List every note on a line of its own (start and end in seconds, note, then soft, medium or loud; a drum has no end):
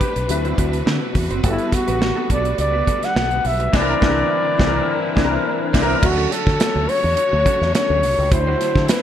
0.00 1.42 C3 medium
0.00 0.26 G3 medium
0.00 0.26 A3 medium
0.00 0.27 C4 medium
0.00 0.27 D4 medium
0.00 1.42 D4 medium
0.00 0.16 D4 medium
0.00 0.28 G4 medium
0.00 0.16 G4 medium
0.00 0.28 B4 medium
0.00 1.16 B4 medium
0.00 3.70 B4 medium
0.00 0.15 C5 medium
0.00 kick medium
0.00 closed hi-hat medium
0.16 0.26 B1 medium
0.16 muted clean electric guitar stroke soft
0.16 closed hi-hat soft
0.28 0.52 D2 loud
0.28 1.43 E3 medium
0.28 1.41 F#3 medium
0.28 1.42 C4 medium
0.28 1.42 E4 medium
0.28 3.70 F#4 medium
0.28 1.43 B4 medium
0.28 muted clean electric guitar stroke soft
0.28 closed hi-hat medium
0.45 0.56 C4 medium
0.45 0.57 F#4 medium
0.45 0.58 C5 medium
0.45 closed hi-hat soft
0.58 0.81 D2 medium
0.58 0.77 C4 medium
0.58 0.73 F#4 medium
0.58 0.72 B4 medium
0.58 kick medium
0.58 closed hi-hat medium
0.73 muted clean electric guitar stroke soft
0.73 closed hi-hat soft
0.86 0.99 D3 medium
0.86 1.05 C4 medium
0.86 1.01 F#4 medium
0.86 1.00 B4 medium
0.86 snare loud
1.01 muted clean electric guitar stroke soft
1.15 1.27 E2 medium
1.15 muted clean electric guitar stroke soft
1.15 kick medium
1.15 open hi-hat medium
1.30 1.41 F#1 medium
1.30 1.43 C4 medium
1.30 1.43 F#4 medium
1.30 1.44 C5 medium
1.30 closed hi-hat soft
1.42 1.56 G1 loud
1.42 3.71 D3 medium
1.42 3.69 G3 medium
1.42 5.99 G3 medium
1.42 3.71 A3 medium
1.42 1.51 A3 soft
1.42 1.63 B3 medium
1.42 1.75 E4 loud
1.42 3.69 F#4 medium
1.42 1.59 F#4 medium
1.42 3.70 A4 medium
1.42 1.58 A4 medium
1.42 kick loud
1.42 closed hi-hat medium
1.50 3.72 B3 medium
1.58 muted clean electric guitar stroke soft
1.58 closed hi-hat soft
1.72 2.31 F#4 loud
1.72 muted clean electric guitar stroke soft
1.72 kick medium
1.72 snare soft
1.72 closed hi-hat medium
1.88 2.11 A1 medium
1.88 2.00 B3 soft
1.88 2.00 F#4 medium
1.88 2.01 B4 medium
1.88 closed hi-hat medium
2.01 muted clean electric guitar stroke soft
2.01 snare loud
2.16 2.28 B3 medium
2.16 2.29 F#4 medium
2.16 2.30 A4 medium
2.29 2.53 B1 medium
2.29 2.45 B3 medium
2.29 2.45 F#4 medium
2.29 2.44 A4 medium
2.29 2.58 D5 medium
2.29 kick medium
2.29 closed hi-hat medium
2.45 muted clean electric guitar stroke soft
2.45 closed hi-hat soft
2.58 2.81 C#2 medium
2.58 3.06 D5 loud
2.58 muted clean electric guitar stroke soft
2.58 closed hi-hat medium
2.73 2.85 B3 soft
2.73 2.86 F#4 medium
2.73 2.87 B4 medium
2.86 3.06 B3 medium
2.86 3.02 F#4 medium
2.86 3.01 A4 medium
2.86 kick medium
2.86 closed hi-hat medium
3.02 3.48 F#5 loud
3.02 muted clean electric guitar stroke soft
3.02 snare soft
3.02 closed hi-hat soft
3.15 3.39 B1 medium
3.15 3.35 B3 medium
3.15 3.31 F#4 medium
3.15 3.30 A4 medium
3.15 snare loud
3.31 muted clean electric guitar stroke soft
3.31 closed hi-hat soft
3.44 3.67 B1 medium
3.44 3.77 E5 medium
3.44 muted clean electric guitar stroke soft
3.44 open hi-hat medium
3.60 3.72 B3 medium
3.60 3.73 F#4 medium
3.60 3.73 B4 medium
3.60 closed hi-hat soft
3.73 3.93 C2 loud
3.73 6.01 D3 medium
3.73 3.93 E3 loud
3.73 6.01 A#3 medium
3.73 3.93 C4 medium
3.73 6.01 C4 medium
3.73 3.93 D4 medium
3.73 3.94 D4 loud
3.73 3.93 E4 medium
3.73 6.01 E4 medium
3.73 3.94 A#4 medium
3.73 5.46 D5 loud
3.73 kick loud
3.73 snare loud
3.73 crash medium
3.82 3.98 A#4 loud
4.01 4.22 C2 loud
4.01 4.21 E3 loud
4.01 4.22 C4 medium
4.01 4.22 D4 medium
4.01 4.23 D4 medium
4.01 4.22 E4 loud
4.01 4.22 C5 medium
4.01 kick loud
4.01 snare loud
4.10 4.26 A#4 medium
4.58 4.79 C2 medium
4.58 4.78 E3 medium
4.58 4.79 C4 medium
4.58 4.79 D4 loud
4.58 4.80 D4 medium
4.58 4.79 E4 medium
4.58 4.80 A#4 loud
4.58 kick loud
4.58 snare loud
4.67 4.84 A#4 medium
5.15 5.37 C2 loud
5.15 5.36 E3 medium
5.15 5.36 C4 medium
5.15 5.36 D4 medium
5.15 5.37 D4 loud
5.15 5.37 E4 loud
5.15 5.38 A#4 loud
5.15 kick loud
5.15 snare loud
5.24 5.41 A#4 medium
5.73 5.94 C2 loud
5.73 5.93 E3 loud
5.73 5.94 C4 medium
5.73 5.94 D4 loud
5.73 5.94 E4 loud
5.73 5.93 C5 loud
5.73 kick loud
5.73 snare medium
5.73 crash medium
5.82 5.99 A#4 loud
6.02 6.25 D2 loud
6.02 9.02 D3 medium
6.02 7.71 F#3 medium
6.02 9.02 F#3 medium
6.02 9.02 A3 medium
6.02 7.71 C#4 medium
6.02 7.71 D4 medium
6.02 8.30 F#4 medium
6.02 6.34 F#4 medium
6.02 6.10 G#4 medium
6.02 8.30 C#5 medium
6.02 kick loud
6.02 crash medium
6.11 7.74 A4 medium
6.18 6.30 C#4 medium
6.18 6.31 F#4 medium
6.18 6.31 A4 medium
6.31 6.46 C#4 medium
6.31 6.47 F#4 medium
6.31 6.90 A4 loud
6.31 6.45 A4 medium
6.31 snare soft
6.31 closed hi-hat medium
6.47 6.57 D3 medium
6.47 muted clean electric guitar stroke soft
6.47 kick medium
6.47 snare soft
6.60 muted clean electric guitar stroke soft
6.60 snare loud
6.60 closed hi-hat medium
6.75 6.86 D2 medium
6.75 muted clean electric guitar stroke medium
6.89 7.74 C#5 loud
6.89 open hi-hat medium
7.04 7.15 E2 medium
7.04 muted clean electric guitar stroke soft
7.17 muted clean electric guitar stroke soft
7.17 closed hi-hat medium
7.32 7.43 D2 medium
7.32 muted clean electric guitar stroke soft
7.46 7.65 C#4 medium
7.46 7.61 F#4 medium
7.46 7.60 A4 medium
7.46 kick loud
7.46 closed hi-hat medium
7.61 7.72 E2 medium
7.61 muted clean electric guitar stroke soft
7.61 snare soft
7.74 8.29 F#3 soft
7.74 8.32 C#4 soft
7.74 8.30 D4 soft
7.74 8.32 A4 soft
7.74 8.33 C#5 loud
7.74 muted clean electric guitar stroke soft
7.74 snare loud
7.74 closed hi-hat loud
7.90 8.03 D2 medium
7.90 muted clean electric guitar stroke medium
8.03 8.15 C2 medium
8.03 open hi-hat medium
8.18 8.29 C#2 loud
8.18 muted clean electric guitar stroke soft
8.31 8.54 D2 loud
8.31 9.02 F#3 medium
8.31 9.02 C4 medium
8.31 9.02 D4 medium
8.31 9.02 E4 medium
8.31 8.90 C5 loud
8.31 9.02 C5 medium
8.31 muted clean electric guitar stroke soft
8.31 kick loud
8.31 closed hi-hat loud
8.47 8.59 E4 medium
8.47 8.60 F#4 medium
8.47 8.61 C5 medium
8.61 8.76 E4 medium
8.61 8.76 F#4 medium
8.61 8.75 C5 medium
8.61 snare soft
8.61 closed hi-hat medium
8.75 8.86 D3 medium
8.75 muted clean electric guitar stroke soft
8.75 kick medium
8.75 snare soft
8.89 9.02 B4 loud
8.89 muted clean electric guitar stroke medium
8.89 snare loud
8.89 closed hi-hat medium